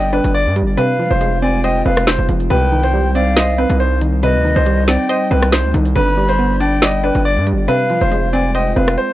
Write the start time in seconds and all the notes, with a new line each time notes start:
Already playing: G1 D3 G3 B3 D4 D5 G5
0.13 D4 B4
0.24 G1, closed hi-hat
0.34 D5
0.46 G2
0.56 G3, closed hi-hat
0.62 G1
0.77 C3 G#3 C4 F4 B4 F5, closed hi-hat
0.99 F3
1.11 F1 C5
1.21 G#3, closed hi-hat
1.42 C4 D5 G#5
1.64 C5 D#5 G5, closed hi-hat
1.86 F1 C4 B4 F5
1.97 cross-stick, closed hi-hat
2.07 C5, snare
2.19 F1
2.29 F1 F3, closed hi-hat
2.40 closed hi-hat
2.50 C2 C3 G3 D#4 B4 G5, closed hi-hat
2.72 D#3
2.83 C5, closed hi-hat
2.94 G3
3.15 C4 D5 F5, closed hi-hat
3.37 C5 D#5, snare, closed hi-hat
3.58 C4 B4
3.70 C2, closed hi-hat
3.80 C5
4.01 D#3, closed hi-hat
4.23 C3 B4 D#5, closed hi-hat
4.34 D2
4.45 D#3
4.56 C2 C5
4.66 G3, closed hi-hat
4.88 C4 D5 G5, snare
5.09 C5 D#5, closed hi-hat
5.31 C2 C4 B4
5.42 cross-stick, closed hi-hat
5.52 C5, snare
5.64 D2
5.74 C2 D#3, closed hi-hat
5.85 closed hi-hat
5.96 G1 D3 G3 D4 B4 D5 B5, closed hi-hat
6.17 G3
6.29 C5, closed hi-hat
6.39 B3
6.60 D4 D5 G5, closed hi-hat
6.82 D5 D#5, snare, closed hi-hat
7.03 D4 B4
7.15 G1, closed hi-hat
7.25 D5
7.37 G2
7.47 G3, closed hi-hat
7.52 G1
7.68 C3 G#3 C4 F4 B4 F5, closed hi-hat
7.90 F3
8.01 F1 C5
8.12 G#3, closed hi-hat
8.33 C4 D5 G#5
8.55 C5 D#5 G5, closed hi-hat
8.76 F1 C4 B4 F5
8.88 cross-stick, closed hi-hat
8.98 C5